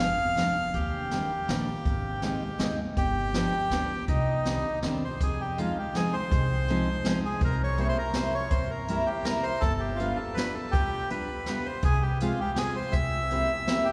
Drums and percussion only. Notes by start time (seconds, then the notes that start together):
0.37 snare, closed hi-hat
0.74 kick, closed hi-hat
1.11 snare, closed hi-hat
1.49 snare, closed hi-hat
1.85 kick, closed hi-hat
2.22 snare, closed hi-hat
2.59 snare, closed hi-hat
2.97 kick, closed hi-hat
3.34 snare, closed hi-hat
3.71 snare, closed hi-hat
4.08 kick, closed hi-hat
4.45 snare, closed hi-hat
4.82 snare, closed hi-hat
5.20 kick, closed hi-hat
5.58 closed hi-hat
5.95 snare, closed hi-hat
6.32 kick, closed hi-hat
6.68 closed hi-hat
7.05 snare, closed hi-hat
7.41 kick, closed hi-hat
7.77 closed hi-hat
8.13 snare, closed hi-hat
8.50 kick, closed hi-hat
8.88 closed hi-hat
9.25 snare, closed hi-hat
9.62 kick, closed hi-hat
10.00 closed hi-hat
10.37 snare, closed hi-hat
10.73 kick, closed hi-hat
11.10 closed hi-hat
11.46 snare, closed hi-hat
11.82 kick, closed hi-hat
12.20 closed hi-hat
12.56 snare, closed hi-hat
12.93 kick, closed hi-hat
13.30 closed hi-hat
13.67 snare, closed hi-hat